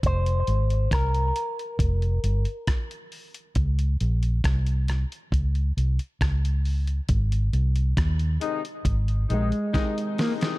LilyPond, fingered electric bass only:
\new Staff \with { instrumentName = "Fingered electric bass" } { \clef bass \time 4/4 \key f \minor \tempo 4 = 68 f,,8 aes,,8 c,8 r8 f,,8 g,,16 r4 r16 | des,8 bes,,8 c,8. r16 des,8 c,16 r16 des,4 | aes,,8 c,8 ees,8 r8 aes,,8 bes,,16 r4 r16 | }